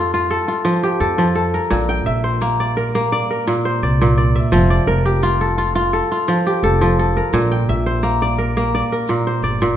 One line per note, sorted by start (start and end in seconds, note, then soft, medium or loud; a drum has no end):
0.00 0.38 F2 medium
0.00 0.63 F3 medium
0.00 0.13 F4 medium
0.00 0.83 G4 medium
0.00 0.30 A4 medium
0.00 0.19 D5 medium
0.14 0.48 F4 medium
0.14 shaker soft
0.31 1.00 A4 medium
0.31 shaker soft
0.48 1.99 F4 medium
0.65 1.17 F3 medium
0.65 shaker medium
0.83 2.25 G4 medium
1.00 1.57 F2 medium
1.00 1.35 A4 medium
1.18 1.77 F3 medium
1.18 shaker soft
1.35 2.48 A4 medium
1.54 2.76 A#4 medium
1.54 shaker soft
1.70 2.00 A#1 medium
1.70 3.46 A#2 medium
1.70 shaker medium
1.89 2.82 G5 medium
2.06 3.20 A#1 medium
2.06 3.09 E5 medium
2.24 3.43 C5 medium
2.24 shaker soft
2.41 2.95 A#3 medium
2.41 shaker medium
2.60 3.12 D5 medium
2.77 3.30 A#4 medium
2.94 4.88 A#3 medium
2.94 shaker soft
3.12 3.83 D5 medium
3.12 shaker soft
3.31 4.58 A#4 medium
3.47 4.00 A#2 medium
3.47 shaker medium
3.65 4.84 C5 medium
3.82 4.39 C2 medium
3.82 4.17 D5 medium
4.01 4.58 A#2 medium
4.01 shaker soft
4.18 4.70 D5 medium
4.36 5.29 E5 medium
4.36 shaker soft
4.52 4.80 F1 loud
4.52 6.27 F3 medium
4.52 shaker medium
4.70 5.81 D5 medium
4.87 6.00 F1 medium
4.87 5.47 A#4 medium
5.06 6.46 G4 medium
5.06 shaker soft
5.22 5.58 F4 medium
5.22 shaker medium
5.41 5.93 A4 medium
5.58 5.75 F4 medium
5.75 6.11 F4 medium
5.75 shaker soft
5.93 6.63 A4 medium
5.93 shaker soft
6.12 7.63 F4 medium
6.27 6.80 F3 medium
6.27 shaker medium
6.47 7.88 G4 medium
6.63 7.19 F1 medium
6.63 6.99 A4 medium
6.81 7.38 F3 medium
6.81 shaker soft
6.99 8.09 A4 medium
7.16 8.38 A#4 medium
7.16 shaker soft
7.33 7.61 A#1 medium
7.33 9.08 A#2 medium
7.33 shaker medium
7.51 8.45 G5 medium
7.69 8.81 A#1 medium
7.69 8.73 E5 medium
7.86 9.05 C5 medium
8.03 8.57 A#3 medium
8.03 shaker medium
8.21 8.74 D5 medium
8.21 shaker soft
8.38 8.92 A#4 medium
8.56 9.77 A#3 medium
8.56 shaker soft
8.75 9.43 D5 medium
8.92 9.77 A#4 medium
8.92 shaker soft
9.08 9.61 A#2 medium
9.08 shaker medium
9.27 9.77 C5 medium
9.42 9.74 G1 medium
9.42 9.77 D5 medium
9.61 9.77 A#2 medium
9.61 shaker soft